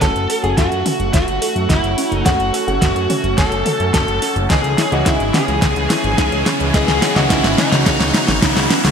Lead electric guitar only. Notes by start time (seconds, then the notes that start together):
0.02 A4
0.43 G#4
0.58 F#4
1.14 F#4
1.70 E4
2.12 D#4
2.26 F#4
3.38 A4
3.94 A4
4.50 G#4
4.92 F#4
5.06 E4
5.34 G#4
6.75 G#4
7.16 F#4
7.30 E4
7.58 D#4
8.42 E4